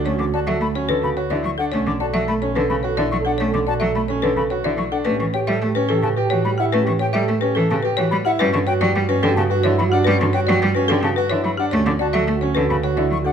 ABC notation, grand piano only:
X:1
M:3/4
L:1/16
Q:1/4=108
K:D
V:1 name="Grand piano"
C z F A z C A z F E z D | C z F A z C A z F E z D | C z F A z C A z F E z D | C z G A z C A z G F z E |
C z G A z C A z G F z E | C z F G z C G z F E z D | C z F G z C G z F E z D | C z F A z C A z F E z D |]